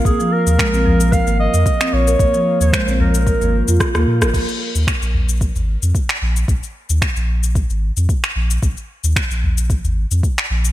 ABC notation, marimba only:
X:1
M:4/4
L:1/16
Q:"Swing 16ths" 1/4=112
K:Bbm
V:1 name="Marimba"
B, F,3 A, C F, B B B,4 C z B | B, F,3 A, C F, B B B, z F z B, z B | z16 | z16 |
z16 |]